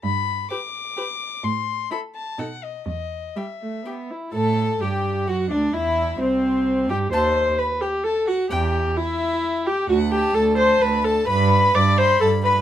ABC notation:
X:1
M:3/4
L:1/8
Q:1/4=129
K:Em
V:1 name="Violin"
b2 d'4 | c'2 b a f ^d | ^d2 e3 z | a2 g2 f d |
e2 c3 g | c'2 b g a f | g2 e3 g | f g a c' b a |
b2 d' c' a b |]
V:2 name="Violin"
z2 B2 B2 | z2 A2 A2 | z2 G2 G2 | A2 G2 F D |
E2 C3 G | a z4 z | g z4 z | z a2 a2 a |
b b2 b2 b |]
V:3 name="Viola"
z2 G2 G2 | z2 E2 ^D2 | z2 G, A, B, E | A2 G2 F D |
E2 C3 G | c2 B G A F | G2 E3 G | F G A c B A |
B2 d c A B |]
V:4 name="Cello" clef=bass
G,,2 z4 | A,,2 z2 B,,2 | E,,2 z4 | A,,2 G,,2 F,, D,, |
E,,2 C,,3 G,, | ^D,,2 z4 | E,,2 z4 | D,,2 D,,2 D,,2 |
G,,2 G,,2 G,,2 |]